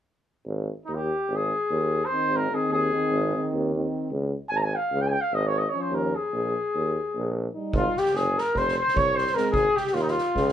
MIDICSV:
0, 0, Header, 1, 7, 480
1, 0, Start_track
1, 0, Key_signature, -4, "major"
1, 0, Tempo, 500000
1, 10103, End_track
2, 0, Start_track
2, 0, Title_t, "Cornet"
2, 0, Program_c, 0, 56
2, 818, Note_on_c, 0, 63, 52
2, 909, Note_on_c, 0, 67, 68
2, 923, Note_off_c, 0, 63, 0
2, 1300, Note_on_c, 0, 68, 66
2, 1314, Note_off_c, 0, 67, 0
2, 1971, Note_on_c, 0, 72, 80
2, 1985, Note_off_c, 0, 68, 0
2, 2265, Note_on_c, 0, 70, 70
2, 2280, Note_off_c, 0, 72, 0
2, 2441, Note_on_c, 0, 68, 62
2, 2455, Note_off_c, 0, 70, 0
2, 2600, Note_off_c, 0, 68, 0
2, 2612, Note_on_c, 0, 68, 76
2, 3351, Note_off_c, 0, 68, 0
2, 4307, Note_on_c, 0, 80, 84
2, 4382, Note_on_c, 0, 82, 61
2, 4396, Note_off_c, 0, 80, 0
2, 4443, Note_on_c, 0, 80, 75
2, 4457, Note_off_c, 0, 82, 0
2, 4563, Note_on_c, 0, 77, 62
2, 4577, Note_off_c, 0, 80, 0
2, 4811, Note_on_c, 0, 79, 72
2, 4825, Note_off_c, 0, 77, 0
2, 4864, Note_on_c, 0, 80, 70
2, 4878, Note_off_c, 0, 79, 0
2, 4905, Note_on_c, 0, 79, 80
2, 4920, Note_off_c, 0, 80, 0
2, 5000, Note_on_c, 0, 77, 74
2, 5014, Note_off_c, 0, 79, 0
2, 5128, Note_on_c, 0, 75, 81
2, 5143, Note_off_c, 0, 77, 0
2, 5255, Note_on_c, 0, 73, 79
2, 5269, Note_off_c, 0, 75, 0
2, 5357, Note_on_c, 0, 75, 68
2, 5371, Note_off_c, 0, 73, 0
2, 5467, Note_on_c, 0, 73, 65
2, 5481, Note_off_c, 0, 75, 0
2, 5578, Note_on_c, 0, 72, 56
2, 5593, Note_off_c, 0, 73, 0
2, 5707, Note_on_c, 0, 70, 56
2, 5721, Note_off_c, 0, 72, 0
2, 5906, Note_on_c, 0, 68, 62
2, 5921, Note_off_c, 0, 70, 0
2, 7097, Note_off_c, 0, 68, 0
2, 7456, Note_on_c, 0, 65, 72
2, 7666, Note_on_c, 0, 67, 67
2, 7680, Note_off_c, 0, 65, 0
2, 7838, Note_on_c, 0, 68, 79
2, 7852, Note_off_c, 0, 67, 0
2, 8062, Note_on_c, 0, 70, 84
2, 8076, Note_off_c, 0, 68, 0
2, 8237, Note_on_c, 0, 72, 84
2, 8251, Note_off_c, 0, 70, 0
2, 8432, Note_off_c, 0, 72, 0
2, 8438, Note_on_c, 0, 72, 90
2, 8606, Note_on_c, 0, 73, 94
2, 8620, Note_off_c, 0, 72, 0
2, 8790, Note_on_c, 0, 72, 84
2, 8805, Note_off_c, 0, 73, 0
2, 8969, Note_on_c, 0, 70, 74
2, 8983, Note_off_c, 0, 72, 0
2, 9130, Note_off_c, 0, 70, 0
2, 9135, Note_on_c, 0, 68, 83
2, 9369, Note_on_c, 0, 67, 66
2, 9383, Note_off_c, 0, 68, 0
2, 9542, Note_on_c, 0, 65, 65
2, 9557, Note_off_c, 0, 67, 0
2, 9621, Note_on_c, 0, 63, 62
2, 9635, Note_off_c, 0, 65, 0
2, 9689, Note_on_c, 0, 65, 79
2, 9704, Note_off_c, 0, 63, 0
2, 10103, Note_off_c, 0, 65, 0
2, 10103, End_track
3, 0, Start_track
3, 0, Title_t, "Flugelhorn"
3, 0, Program_c, 1, 56
3, 7446, Note_on_c, 1, 65, 73
3, 7666, Note_on_c, 1, 67, 69
3, 7681, Note_off_c, 1, 65, 0
3, 7830, Note_on_c, 1, 68, 58
3, 7844, Note_off_c, 1, 67, 0
3, 8044, Note_on_c, 1, 70, 61
3, 8058, Note_off_c, 1, 68, 0
3, 8222, Note_on_c, 1, 72, 75
3, 8237, Note_off_c, 1, 70, 0
3, 8424, Note_off_c, 1, 72, 0
3, 8430, Note_on_c, 1, 72, 71
3, 8604, Note_on_c, 1, 73, 78
3, 8619, Note_off_c, 1, 72, 0
3, 8823, Note_on_c, 1, 72, 77
3, 8837, Note_off_c, 1, 73, 0
3, 8992, Note_on_c, 1, 70, 64
3, 9006, Note_off_c, 1, 72, 0
3, 9160, Note_off_c, 1, 70, 0
3, 9172, Note_on_c, 1, 68, 74
3, 9388, Note_on_c, 1, 67, 64
3, 9403, Note_off_c, 1, 68, 0
3, 9543, Note_on_c, 1, 65, 55
3, 9557, Note_off_c, 1, 67, 0
3, 9608, Note_on_c, 1, 63, 45
3, 9622, Note_off_c, 1, 65, 0
3, 9687, Note_on_c, 1, 65, 59
3, 9701, Note_off_c, 1, 63, 0
3, 10103, Note_off_c, 1, 65, 0
3, 10103, End_track
4, 0, Start_track
4, 0, Title_t, "French horn"
4, 0, Program_c, 2, 60
4, 2029, Note_on_c, 2, 60, 43
4, 2411, Note_off_c, 2, 60, 0
4, 2423, Note_on_c, 2, 60, 51
4, 2809, Note_off_c, 2, 60, 0
4, 2818, Note_on_c, 2, 60, 54
4, 3205, Note_off_c, 2, 60, 0
4, 3215, Note_on_c, 2, 60, 49
4, 3587, Note_off_c, 2, 60, 0
4, 3604, Note_on_c, 2, 60, 54
4, 3941, Note_off_c, 2, 60, 0
4, 5498, Note_on_c, 2, 61, 46
4, 5887, Note_off_c, 2, 61, 0
4, 7241, Note_on_c, 2, 63, 44
4, 7626, Note_off_c, 2, 63, 0
4, 8971, Note_on_c, 2, 60, 54
4, 9129, Note_off_c, 2, 60, 0
4, 10103, End_track
5, 0, Start_track
5, 0, Title_t, "Euphonium"
5, 0, Program_c, 3, 58
5, 2029, Note_on_c, 3, 51, 48
5, 2402, Note_off_c, 3, 51, 0
5, 2407, Note_on_c, 3, 51, 48
5, 2801, Note_off_c, 3, 51, 0
5, 2810, Note_on_c, 3, 51, 58
5, 3201, Note_off_c, 3, 51, 0
5, 3219, Note_on_c, 3, 51, 59
5, 3589, Note_off_c, 3, 51, 0
5, 3596, Note_on_c, 3, 51, 51
5, 3937, Note_off_c, 3, 51, 0
5, 5504, Note_on_c, 3, 53, 49
5, 5890, Note_off_c, 3, 53, 0
5, 7244, Note_on_c, 3, 55, 36
5, 7628, Note_off_c, 3, 55, 0
5, 8986, Note_on_c, 3, 56, 56
5, 9141, Note_off_c, 3, 56, 0
5, 10103, End_track
6, 0, Start_track
6, 0, Title_t, "Tuba"
6, 0, Program_c, 4, 58
6, 441, Note_on_c, 4, 32, 70
6, 662, Note_off_c, 4, 32, 0
6, 848, Note_on_c, 4, 39, 67
6, 1067, Note_off_c, 4, 39, 0
6, 1237, Note_on_c, 4, 32, 70
6, 1459, Note_off_c, 4, 32, 0
6, 1639, Note_on_c, 4, 39, 80
6, 1944, Note_off_c, 4, 39, 0
6, 2195, Note_on_c, 4, 32, 60
6, 2415, Note_off_c, 4, 32, 0
6, 2586, Note_on_c, 4, 39, 63
6, 2808, Note_off_c, 4, 39, 0
6, 2988, Note_on_c, 4, 32, 86
6, 3208, Note_off_c, 4, 32, 0
6, 3391, Note_on_c, 4, 39, 78
6, 3695, Note_off_c, 4, 39, 0
6, 3947, Note_on_c, 4, 37, 80
6, 4164, Note_off_c, 4, 37, 0
6, 4324, Note_on_c, 4, 32, 70
6, 4547, Note_off_c, 4, 32, 0
6, 4727, Note_on_c, 4, 37, 84
6, 4949, Note_off_c, 4, 37, 0
6, 5114, Note_on_c, 4, 32, 90
6, 5422, Note_off_c, 4, 32, 0
6, 5669, Note_on_c, 4, 39, 72
6, 5891, Note_off_c, 4, 39, 0
6, 6075, Note_on_c, 4, 34, 72
6, 6295, Note_off_c, 4, 34, 0
6, 6477, Note_on_c, 4, 39, 73
6, 6695, Note_off_c, 4, 39, 0
6, 6872, Note_on_c, 4, 34, 78
6, 7174, Note_off_c, 4, 34, 0
6, 7417, Note_on_c, 4, 32, 78
6, 7537, Note_off_c, 4, 32, 0
6, 7815, Note_on_c, 4, 30, 79
6, 8033, Note_off_c, 4, 30, 0
6, 8195, Note_on_c, 4, 29, 76
6, 8417, Note_off_c, 4, 29, 0
6, 8593, Note_on_c, 4, 36, 72
6, 8898, Note_off_c, 4, 36, 0
6, 9144, Note_on_c, 4, 32, 71
6, 9265, Note_off_c, 4, 32, 0
6, 9539, Note_on_c, 4, 39, 79
6, 9758, Note_off_c, 4, 39, 0
6, 9944, Note_on_c, 4, 37, 98
6, 10103, Note_off_c, 4, 37, 0
6, 10103, End_track
7, 0, Start_track
7, 0, Title_t, "Drums"
7, 7425, Note_on_c, 9, 36, 74
7, 7521, Note_off_c, 9, 36, 0
7, 7648, Note_on_c, 9, 38, 28
7, 7732, Note_off_c, 9, 38, 0
7, 7732, Note_on_c, 9, 38, 22
7, 7828, Note_off_c, 9, 38, 0
7, 7828, Note_on_c, 9, 38, 22
7, 7924, Note_off_c, 9, 38, 0
7, 8045, Note_on_c, 9, 38, 23
7, 8141, Note_off_c, 9, 38, 0
7, 8214, Note_on_c, 9, 36, 44
7, 8217, Note_on_c, 9, 38, 19
7, 8310, Note_off_c, 9, 36, 0
7, 8313, Note_off_c, 9, 38, 0
7, 8335, Note_on_c, 9, 38, 25
7, 8431, Note_off_c, 9, 38, 0
7, 8525, Note_on_c, 9, 38, 23
7, 8609, Note_on_c, 9, 36, 75
7, 8621, Note_off_c, 9, 38, 0
7, 8705, Note_off_c, 9, 36, 0
7, 8811, Note_on_c, 9, 38, 22
7, 8894, Note_off_c, 9, 38, 0
7, 8894, Note_on_c, 9, 38, 21
7, 8990, Note_off_c, 9, 38, 0
7, 8995, Note_on_c, 9, 38, 26
7, 9091, Note_off_c, 9, 38, 0
7, 9156, Note_on_c, 9, 36, 75
7, 9252, Note_off_c, 9, 36, 0
7, 9378, Note_on_c, 9, 38, 27
7, 9473, Note_off_c, 9, 38, 0
7, 9473, Note_on_c, 9, 38, 22
7, 9554, Note_off_c, 9, 38, 0
7, 9554, Note_on_c, 9, 38, 22
7, 9650, Note_off_c, 9, 38, 0
7, 9673, Note_on_c, 9, 38, 19
7, 9769, Note_off_c, 9, 38, 0
7, 9773, Note_on_c, 9, 38, 22
7, 9869, Note_off_c, 9, 38, 0
7, 9944, Note_on_c, 9, 36, 46
7, 9948, Note_on_c, 9, 38, 21
7, 10040, Note_off_c, 9, 36, 0
7, 10044, Note_off_c, 9, 38, 0
7, 10064, Note_on_c, 9, 38, 26
7, 10103, Note_off_c, 9, 38, 0
7, 10103, End_track
0, 0, End_of_file